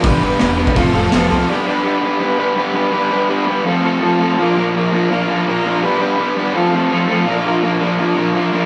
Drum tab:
HH |o---o---o---o---|----------------|----------------|----------------|
SD |----o-------o---|----------------|----------------|----------------|
BD |o------oo-------|----------------|----------------|----------------|

HH |----------------|----------------|
SD |----------------|----------------|
BD |----------------|----------------|